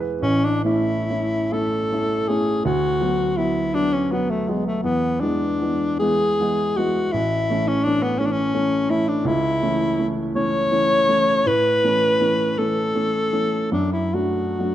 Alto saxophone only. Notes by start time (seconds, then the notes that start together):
0.21 C#4
0.44 D4
0.65 E4
1.53 A4
2.28 G#4
2.65 F#4
3.37 E4
3.74 D4
3.93 C#4
4.12 B3
4.30 A3
4.48 G#3
4.67 A3
4.83 B3
5.20 D4
5.99 G#4
6.76 F#4
7.12 E4
7.68 C#4
7.84 D4
8.03 B3
8.19 C#4
8.26 D4
8.32 C#4
8.90 E4
9.08 D4
9.27 E4
10.36 C#5
11.47 B4
12.58 A4
13.72 D4
13.93 E4
14.14 F#4